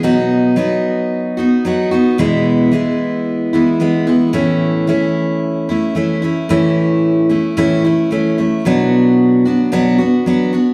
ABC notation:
X:1
M:4/4
L:1/8
Q:1/4=112
K:A
V:1 name="Steel-string acoustic guitar"
[B,,F,B,^DF]2 [F,B,DF]3 [B,DF] [F,B,DF] [B,DF] | [E,,B,,E,G,B,E]2 [E,G,B,E]3 [E,G,B,E] [E,G,B,E] [E,G,B,E] | [A,,E,A,CE]2 [E,A,CE]3 [A,CE] [E,A,CE] [A,CE] | [A,,E,A,CE]3 [A,CE] [A,,E,A,CE] [A,CE] [E,A,CE] [A,CE] |
[B,,F,B,DF]3 [B,DF] [B,,F,B,DF] [B,DF] [F,B,DF] [B,DF] |]